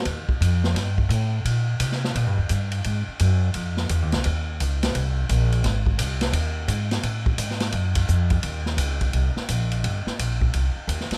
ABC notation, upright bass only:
X:1
M:4/4
L:1/8
Q:"Swing" 1/4=172
K:Eb
V:1 name="Upright bass" clef=bass
E,, z F,,2 G,,2 =A,,2 | B,,2 C,2 (3B,, G,, E,, G,,2 | A,, z _G,,2 F,,2 (3_F,, E,, C,, | E,,2 _D,,2 C,,2 B,,,2 |
A,,,2 C,,2 E,,2 A,,2 | =A,,2 _A,,2 _G,,2 F,,2 | E,,2 _D,,2 C,, z B,,,2 | G,,, z B,,,2 C,, z E,, z |]